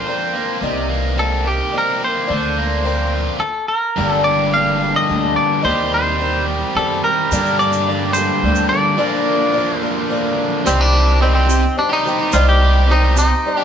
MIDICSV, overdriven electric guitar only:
0, 0, Header, 1, 3, 480
1, 0, Start_track
1, 0, Tempo, 558140
1, 532, Time_signature, 3, 2, 24, 8
1, 11732, End_track
2, 0, Start_track
2, 0, Title_t, "Overdriven electric guitar"
2, 0, Program_c, 0, 29
2, 0, Note_on_c, 0, 50, 69
2, 0, Note_on_c, 0, 58, 64
2, 0, Note_on_c, 0, 65, 71
2, 46, Note_on_c, 0, 60, 67
2, 280, Note_off_c, 0, 58, 0
2, 284, Note_on_c, 0, 58, 54
2, 289, Note_off_c, 0, 50, 0
2, 522, Note_on_c, 0, 48, 69
2, 535, Note_off_c, 0, 65, 0
2, 548, Note_off_c, 0, 58, 0
2, 767, Note_on_c, 0, 58, 64
2, 793, Note_off_c, 0, 60, 0
2, 1004, Note_on_c, 0, 60, 64
2, 1248, Note_on_c, 0, 67, 69
2, 1491, Note_off_c, 0, 60, 0
2, 1501, Note_on_c, 0, 60, 65
2, 1728, Note_off_c, 0, 48, 0
2, 1733, Note_off_c, 0, 58, 0
2, 1744, Note_on_c, 0, 58, 59
2, 1971, Note_off_c, 0, 67, 0
2, 1971, Note_on_c, 0, 50, 71
2, 1977, Note_off_c, 0, 60, 0
2, 1978, Note_off_c, 0, 58, 0
2, 2214, Note_on_c, 0, 58, 68
2, 2448, Note_on_c, 0, 60, 68
2, 2690, Note_on_c, 0, 65, 71
2, 2931, Note_off_c, 0, 60, 0
2, 2932, Note_off_c, 0, 50, 0
2, 2932, Note_off_c, 0, 65, 0
2, 2934, Note_off_c, 0, 58, 0
2, 3408, Note_on_c, 0, 43, 88
2, 3414, Note_on_c, 0, 50, 85
2, 3426, Note_on_c, 0, 55, 85
2, 3428, Note_on_c, 0, 58, 90
2, 3437, Note_on_c, 0, 62, 89
2, 3440, Note_on_c, 0, 67, 95
2, 4835, Note_off_c, 0, 43, 0
2, 4838, Note_off_c, 0, 50, 0
2, 4845, Note_off_c, 0, 55, 0
2, 4848, Note_on_c, 0, 51, 87
2, 4850, Note_off_c, 0, 62, 0
2, 4855, Note_off_c, 0, 58, 0
2, 4858, Note_on_c, 0, 55, 97
2, 4868, Note_on_c, 0, 60, 99
2, 4875, Note_off_c, 0, 67, 0
2, 4878, Note_on_c, 0, 67, 107
2, 6275, Note_off_c, 0, 51, 0
2, 6280, Note_off_c, 0, 55, 0
2, 6285, Note_off_c, 0, 60, 0
2, 6290, Note_off_c, 0, 67, 0
2, 6290, Note_on_c, 0, 43, 92
2, 6297, Note_on_c, 0, 50, 95
2, 6304, Note_on_c, 0, 55, 99
2, 6309, Note_on_c, 0, 58, 93
2, 6310, Note_on_c, 0, 62, 101
2, 6314, Note_on_c, 0, 67, 97
2, 7711, Note_off_c, 0, 50, 0
2, 7715, Note_on_c, 0, 46, 93
2, 7716, Note_off_c, 0, 43, 0
2, 7722, Note_off_c, 0, 58, 0
2, 7723, Note_off_c, 0, 55, 0
2, 7726, Note_off_c, 0, 62, 0
2, 7727, Note_off_c, 0, 67, 0
2, 7728, Note_on_c, 0, 50, 107
2, 7732, Note_on_c, 0, 58, 101
2, 7737, Note_on_c, 0, 62, 110
2, 7745, Note_on_c, 0, 65, 100
2, 9148, Note_off_c, 0, 46, 0
2, 9155, Note_off_c, 0, 50, 0
2, 9157, Note_off_c, 0, 58, 0
2, 9158, Note_on_c, 0, 48, 101
2, 9159, Note_off_c, 0, 62, 0
2, 9163, Note_off_c, 0, 65, 0
2, 9169, Note_on_c, 0, 51, 97
2, 9177, Note_on_c, 0, 55, 114
2, 9178, Note_on_c, 0, 60, 109
2, 9182, Note_on_c, 0, 67, 100
2, 9381, Note_off_c, 0, 51, 0
2, 9392, Note_on_c, 0, 51, 78
2, 9398, Note_off_c, 0, 55, 0
2, 9401, Note_on_c, 0, 55, 76
2, 9404, Note_off_c, 0, 60, 0
2, 9407, Note_on_c, 0, 60, 77
2, 9413, Note_off_c, 0, 67, 0
2, 9417, Note_on_c, 0, 67, 85
2, 9634, Note_off_c, 0, 51, 0
2, 9636, Note_off_c, 0, 48, 0
2, 9639, Note_on_c, 0, 48, 96
2, 9644, Note_on_c, 0, 51, 94
2, 9651, Note_off_c, 0, 55, 0
2, 9654, Note_on_c, 0, 55, 108
2, 9655, Note_off_c, 0, 60, 0
2, 9658, Note_on_c, 0, 60, 99
2, 9660, Note_off_c, 0, 67, 0
2, 9663, Note_on_c, 0, 67, 91
2, 9742, Note_off_c, 0, 67, 0
2, 9752, Note_on_c, 0, 67, 81
2, 9763, Note_off_c, 0, 60, 0
2, 9765, Note_off_c, 0, 55, 0
2, 9766, Note_on_c, 0, 60, 68
2, 9776, Note_on_c, 0, 55, 57
2, 9875, Note_off_c, 0, 51, 0
2, 9878, Note_off_c, 0, 55, 0
2, 9879, Note_off_c, 0, 67, 0
2, 9887, Note_off_c, 0, 60, 0
2, 10005, Note_off_c, 0, 48, 0
2, 10233, Note_on_c, 0, 67, 83
2, 10248, Note_on_c, 0, 60, 71
2, 10260, Note_on_c, 0, 55, 66
2, 10357, Note_off_c, 0, 55, 0
2, 10357, Note_on_c, 0, 51, 68
2, 10367, Note_on_c, 0, 55, 72
2, 10372, Note_off_c, 0, 60, 0
2, 10373, Note_off_c, 0, 67, 0
2, 10375, Note_on_c, 0, 60, 76
2, 10383, Note_on_c, 0, 67, 77
2, 10473, Note_off_c, 0, 67, 0
2, 10484, Note_on_c, 0, 67, 74
2, 10496, Note_off_c, 0, 60, 0
2, 10498, Note_off_c, 0, 55, 0
2, 10499, Note_on_c, 0, 60, 74
2, 10508, Note_on_c, 0, 55, 66
2, 10590, Note_off_c, 0, 51, 0
2, 10592, Note_on_c, 0, 48, 101
2, 10600, Note_on_c, 0, 51, 98
2, 10601, Note_off_c, 0, 55, 0
2, 10607, Note_off_c, 0, 67, 0
2, 10611, Note_off_c, 0, 60, 0
2, 10612, Note_on_c, 0, 55, 93
2, 10615, Note_on_c, 0, 60, 112
2, 10617, Note_on_c, 0, 67, 116
2, 10827, Note_off_c, 0, 51, 0
2, 10836, Note_off_c, 0, 55, 0
2, 10838, Note_on_c, 0, 51, 76
2, 10846, Note_on_c, 0, 55, 79
2, 10853, Note_off_c, 0, 67, 0
2, 10854, Note_off_c, 0, 60, 0
2, 10857, Note_on_c, 0, 60, 75
2, 10863, Note_on_c, 0, 67, 88
2, 11059, Note_off_c, 0, 48, 0
2, 11065, Note_off_c, 0, 51, 0
2, 11069, Note_on_c, 0, 48, 92
2, 11073, Note_off_c, 0, 55, 0
2, 11076, Note_on_c, 0, 51, 101
2, 11084, Note_on_c, 0, 55, 97
2, 11087, Note_off_c, 0, 60, 0
2, 11089, Note_off_c, 0, 67, 0
2, 11090, Note_on_c, 0, 60, 103
2, 11100, Note_on_c, 0, 67, 109
2, 11189, Note_off_c, 0, 67, 0
2, 11199, Note_on_c, 0, 67, 69
2, 11203, Note_off_c, 0, 60, 0
2, 11206, Note_on_c, 0, 60, 69
2, 11213, Note_off_c, 0, 55, 0
2, 11223, Note_on_c, 0, 55, 65
2, 11307, Note_off_c, 0, 51, 0
2, 11312, Note_off_c, 0, 55, 0
2, 11317, Note_off_c, 0, 67, 0
2, 11318, Note_off_c, 0, 60, 0
2, 11440, Note_off_c, 0, 48, 0
2, 11678, Note_on_c, 0, 67, 78
2, 11690, Note_on_c, 0, 60, 71
2, 11702, Note_on_c, 0, 55, 67
2, 11732, Note_off_c, 0, 55, 0
2, 11732, Note_off_c, 0, 60, 0
2, 11732, Note_off_c, 0, 67, 0
2, 11732, End_track
3, 0, Start_track
3, 0, Title_t, "Muted overdriven electric guitar strokes"
3, 9885, Note_on_c, 9, 29, 53
3, 9971, Note_off_c, 9, 29, 0
3, 11317, Note_on_c, 9, 29, 47
3, 11403, Note_off_c, 9, 29, 0
3, 11732, End_track
0, 0, End_of_file